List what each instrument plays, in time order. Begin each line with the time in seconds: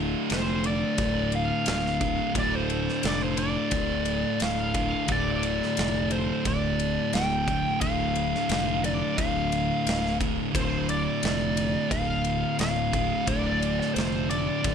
Already playing: fingered electric bass D1, distorted electric guitar D2 A2 D3
0.30 fingered electric bass F1, lead electric guitar C5, snare, ride
0.64 lead electric guitar D5, ride
0.95 fingered electric bass D1, distorted electric guitar D2 A2, kick, ride
0.99 distorted electric guitar D3
1.32 lead electric guitar F5, ride
1.66 fingered electric bass D1, lead electric guitar F5, snare, ride
1.86 snare
2.01 distorted electric guitar D2 A2 D3, kick, ride
2.32 fingered electric bass D1, distorted electric guitar D2 A2 D3, kick, ride
2.38 lead electric guitar D5
2.55 lead electric guitar C5
2.70 ride
2.89 snare
3.03 fingered electric bass F1, lead electric guitar D5, snare, ride
3.23 lead electric guitar C5
3.37 lead electric guitar D5, ride
3.71 fingered electric bass D1, distorted electric guitar D2 A2 D3, kick, ride
4.05 ride
4.40 fingered electric bass D1, lead electric guitar F5, snare, ride
4.74 distorted electric guitar D2 A2 D3, kick, ride
5.07 fingered electric bass D1, distorted electric guitar D2 A2 D3, kick, ride
5.12 lead electric guitar D5
5.43 ride
5.63 snare
5.77 fingered electric bass F1, snare, ride
6.11 lead electric guitar C5, ride
6.45 fingered electric bass D1, distorted electric guitar D2 A2, lead electric guitar D5, kick, ride
6.49 distorted electric guitar D3
6.79 ride
7.13 fingered electric bass D1, lead electric guitar G5, snare, ride
7.47 distorted electric guitar D2 A2 D3, kick, ride
7.81 fingered electric bass D1, distorted electric guitar D2 A2 D3, lead electric guitar F5, kick, ride
8.15 ride
8.35 snare
8.49 fingered electric bass F1, snare, ride
8.84 lead electric guitar D5, ride
9.17 fingered electric bass D1, distorted electric guitar D2 A2 D3, lead electric guitar F5, kick, ride
9.52 ride
9.86 fingered electric bass D1, snare, ride
10.06 snare
10.20 distorted electric guitar D2 A2 D3, kick, ride
10.52 fingered electric bass D1, distorted electric guitar D2 A2, kick, ride
10.56 distorted electric guitar D3, lead electric guitar C5
10.89 lead electric guitar D5, ride
11.23 fingered electric bass F1, snare, ride
11.57 ride
11.89 fingered electric bass D1, distorted electric guitar D2 A2, lead electric guitar F5, kick, ride
11.93 distorted electric guitar D3
12.25 ride
12.59 fingered electric bass D1, lead electric guitar F5, snare, ride
12.92 distorted electric guitar D2 A2 D3, kick, ride
13.26 fingered electric bass D1, distorted electric guitar D2 A2 D3, lead electric guitar D5, kick, ride
13.62 ride
13.80 lead electric guitar D5, snare
13.94 fingered electric bass F1, lead electric guitar C5, snare, ride
14.31 lead electric guitar D5, ride
14.63 fingered electric bass D1, distorted electric guitar D2 A2 D3, kick, ride